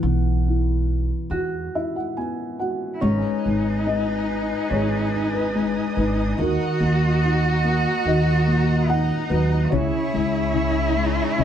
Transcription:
Already playing: E3 B4 F#5
0.03 B1 B3
0.48 E4
1.30 E2 F#4
1.75 E4 E5
1.96 F#5
2.17 B3 G#5
2.59 F#4 F#5
2.94 E4
3.00 G#1 G#3 C#4 D#4 B4 G#5
3.44 G#1 D#4
3.86 G#3 D#5
4.29 D#4
4.70 G#1 G#3 G#4 C#5
5.13 D#4
5.34 B4
5.55 G#3
5.96 G#1 D#4 B4
6.37 D#2 D#3 F#4 A#4 F#5 A#5
6.41 F#4
6.80 D#2 A#3
7.22 D#4
7.64 A#3
8.05 D#2 D#3 F#4 D#5
8.46 A#2
8.88 D#4 F#5
9.30 D#2 F#3 B4
9.64 F#4
9.70 C#2 C#3 E4 G#4 C#5 C#6
10.13 C#2 G#3
10.53 C#3
10.97 G#3
11.38 C#2 C#3 G#4 D#5

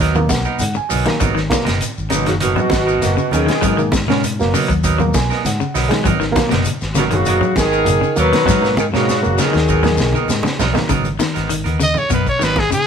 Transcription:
Already playing: D#2
0.00 F#3 B3 D#4 A#4 D#5, kick, snare, closed hi-hat
0.15 B2 D#3 F#3 A#3, low conga, shekere
0.29 B1 F#5, kick, snare, closed hi-hat, high conga, shekere
0.45 B3 D#4 A#4, shekere
0.59 G#2 F#5, closed hi-hat, high conga, shekere
0.74 G#5, muted clean electric guitar stroke, muted fingered electric bass stroke, shekere
0.89 B1 F#3 B3 D#4 A#4, open hi-hat, high conga, shekere
1.06 B2 D#3 F#3 A#3, snare, closed hi-hat, shekere
1.20 G#1 F#3 B3 D#4 A#4, muted clean electric guitar stroke, kick, closed hi-hat, low conga, shekere
1.35 D#3, snare, shekere
1.50 B2 F#3 A#3, kick, snare, closed hi-hat, high conga, shekere
1.65 F#1 B3 D#4 A#4, muted clean electric guitar stroke, snare, closed hi-hat, high conga, shekere
1.81 closed hi-hat, shekere
1.98 G#1, shekere
2.09 B2 C#3 F#3 A#3 B3 D#4 A#4, closed hi-hat, high conga, shekere
2.14 D#4
2.26 F#1 C#3 D#3 F#4, snare, closed hi-hat, shekere
2.40 B2 F#3 B3 D#4 F#4 A#4, closed hi-hat, shekere
2.56 F#3, low conga, shekere
2.70 G#1, kick, snare, closed hi-hat, high conga, shekere
2.86 B3 D#4 A#4, shekere
3.01 F#1 B2 F#3 A#3, snare, closed hi-hat, high conga, shekere
3.17 C#3, shekere
3.31 D#2 B2 D#3 F#3 B3 C#4 D#4 G#4 A#4, closed hi-hat, high conga, shekere
3.46 D#3, snare, closed hi-hat, shekere
3.61 G#2 F#3 B3 D#4 A#4, kick, closed hi-hat, low conga, shekere
3.77 B2 D#3 F#3 A#3, shekere
3.92 kick, snare, closed hi-hat, high conga, shekere
4.08 G#2 B2 F#3 B3 C#4 D#4 A#4, snare, high conga, shekere
4.24 closed hi-hat, shekere
4.39 F#1 B2 F#3 A#3, snare, shekere
4.54 C#3 F#3 B3 D#4 A#4, open hi-hat, high conga, shekere
4.68 D#2 F#3, kick, closed hi-hat, shekere
4.84 F#3 B3 D#4 A#4, kick, closed hi-hat, shekere
4.98 B2 F#3 A#3, low conga, shekere
5.14 B1 G#5, kick, snare, closed hi-hat, high conga, shekere
5.30 B3 D#4 A#4, snare, shekere
5.45 G#2 F#5, snare, closed hi-hat, high conga, shekere
5.60 C#3, muted fingered electric bass stroke, shekere
5.74 B1 F#3 B3 D#4 A#4 D#5, snare, open hi-hat, high conga, shekere
5.88 B2 D#3 F#3 G#3, snare, closed hi-hat, shekere
6.04 G#1 F#3 B3 D#4 A#4, kick, closed hi-hat, low conga, shekere
6.20 D#3, snare, shekere
6.32 B2 F#3 A#3, kick
6.36 snare, closed hi-hat, high conga, shekere
6.49 F#1 B2 B3 D#4 A#4, snare, closed hi-hat, high conga, shekere
6.65 closed hi-hat, high conga, shekere
6.81 G#1, snare, shekere
6.94 B2 C#3 F#3 A#3 B3 D#4 A#4, snare, closed hi-hat, high conga, shekere
6.98 B2
7.11 F#1 C#3 D#3 F#4, closed hi-hat, low conga, shekere
7.25 F#3 B3 D#4 A#4, closed hi-hat, shekere
7.41 F#3, low conga, shekere
7.56 G#1 D#3 G#4, kick, snare, closed hi-hat, high conga, shekere
7.72 B3 D#4 A#4, shekere
7.85 F#1 B2 F#3 A#3, closed hi-hat, high conga, shekere
8.01 C#3, shekere
8.16 D#2 B2 F#3 A#3 B3 A#4 B4, closed hi-hat, shekere
8.33 D#3, snare, closed hi-hat, shekere
8.45 G#2 F#3 B3 D#4, kick, snare, low conga, shekere
8.50 A#4
8.61 B2 F#3 A#3, muted clean electric guitar stroke, snare, shekere
8.77 D#3 G#4, high conga, shekere
8.92 G#2 B2 C#3 F#3 A#3 B3 D#4 F#4 A#4, snare, shekere
9.09 snare, shekere
9.22 F#1 B2 F#3 A#3, shekere
9.38 C#3 D#3 F#3 B3 D#4 G#4 A#4, snare, high conga, shekere
9.53 D#2 D#3, snare, shekere
9.68 F#3 B3 D#4 A#4, kick, shekere
9.83 B2 F#3 A#3, snare, low conga, shekere
9.97 B1, snare, high conga, shekere
10.13 B3 D#4 A#4, high conga, shekere
10.28 G#2, snare, high conga, shekere
10.43 C#3, muted fingered electric bass stroke, snare, low conga, shekere
10.59 B1 F#3 B3 D#4 A#4, snare, low conga, shekere
10.74 B2 D#3 F#3 A#3, snare, low conga, shekere
10.88 G#1 C#3 F#3 B3 D#4 A#4, kick, closed hi-hat, low conga, shekere
11.04 closed hi-hat, high conga, shekere
11.19 D#3, snare, closed hi-hat, high conga, shekere
11.34 G#1 B3 D#4 A#4, snare, closed hi-hat, shekere
11.49 D#3, closed hi-hat, shekere
11.64 D#2 B3 D#4 A#4, closed hi-hat, high conga, shekere
11.80 C#3 D#5, closed hi-hat, high conga, shekere
11.94 low conga, shekere
11.98 C#5
12.09 F#2 B2 B3 D#4 A#4, muted clean electric guitar stroke, kick, closed hi-hat, shekere
12.14 B4
12.27 C#5, kick, closed hi-hat, shekere
12.39 G#1 D#3 F#3 B3 D#4 A#4, snare, closed hi-hat, shekere
12.44 B4
12.56 G#4, kick, snare, high conga, shekere
12.71 C#3 G#4, muted fingered electric bass stroke, closed hi-hat, high conga, shekere

